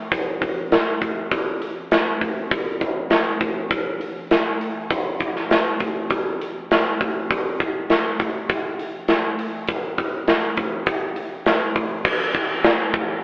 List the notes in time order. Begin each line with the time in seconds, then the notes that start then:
0.12 kick, open hi-hat
0.42 kick, open hi-hat
0.72 snare, open hi-hat
1.02 kick, open hi-hat
1.31 kick, open hi-hat
1.62 open hi-hat
1.91 snare, open hi-hat
2.21 kick, open hi-hat
2.51 kick, open hi-hat
2.81 kick, open hi-hat
3.10 snare, open hi-hat
3.41 kick, open hi-hat
3.71 kick, open hi-hat
4.01 open hi-hat
4.31 snare, open hi-hat
4.61 open hi-hat
4.90 kick, open hi-hat
5.20 kick, open hi-hat
5.36 snare
5.51 snare, open hi-hat
5.80 kick, open hi-hat
6.10 kick, open hi-hat
6.41 open hi-hat
6.71 snare, open hi-hat
7.01 kick, open hi-hat
7.31 kick, open hi-hat
7.60 kick, open hi-hat
7.90 snare, open hi-hat
8.20 kick, open hi-hat
8.49 kick, open hi-hat
8.79 open hi-hat
9.08 snare, open hi-hat
9.39 open hi-hat
9.68 kick, open hi-hat
9.98 kick, open hi-hat
10.28 snare, open hi-hat
10.57 kick, open hi-hat
10.86 kick, open hi-hat
11.16 open hi-hat
11.46 snare, open hi-hat
11.76 kick, open hi-hat
12.05 kick, crash
12.35 kick
12.64 snare, crash
12.94 kick